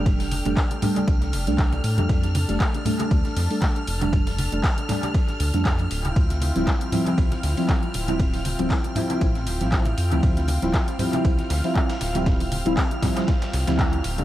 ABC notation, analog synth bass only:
X:1
M:4/4
L:1/16
Q:"Swing 16ths" 1/4=118
K:Dm
V:1 name="Analog synth bass" clef=bass
F,,,3 F,,, z4 C,,2 F,,, C,,3 A,, F,, | F,,3 F,,, z4 D,, z F,, z3 F,,,2- | F,,,3 F,,, z6 D,, F,,3 D,,,2 | D,,3 D,,, z4 C,, z D,, z3 D,,,2- |
D,,,3 D,,, z4 A,,,2 D,,, A,,,3 F,, D,, | D,,3 D,,, z4 C,, z D,, z3 D,,,2- | D,,,3 D,,, z6 C,, D,,3 D,,,2 |]